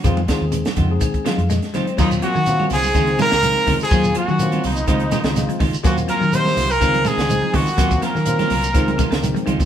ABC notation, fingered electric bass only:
X:1
M:4/4
L:1/16
Q:1/4=124
K:Ebdor
V:1 name="Fingered electric bass" clef=bass
F,,2 z E,,2 z F,,2 z3 F,,2 z3 | E,,2 z E,3 C,,2 D,,2 z D,,2 z D,, z | E,,2 z E,3 C,,2 D,,2 z D,,2 z D,, z | E,,2 z E,3 C,,2 D,,2 z D,,2 z D,, z |
E,,2 z E,3 C,,2 D,,2 z D,,2 z D,, z |]